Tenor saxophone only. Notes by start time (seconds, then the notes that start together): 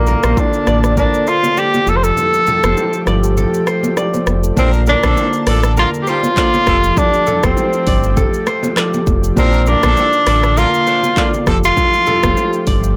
Already playing: A#3
0.38 D4
0.98 D4
1.28 F4
1.58 G4
1.88 A4
1.96 C5
2.03 A4
4.58 C4
4.89 D4
5.79 F4
6.02 G4
6.09 F4
6.98 D4
7.45 C4
9.39 C4
9.68 D4
10.58 F4
11.65 F4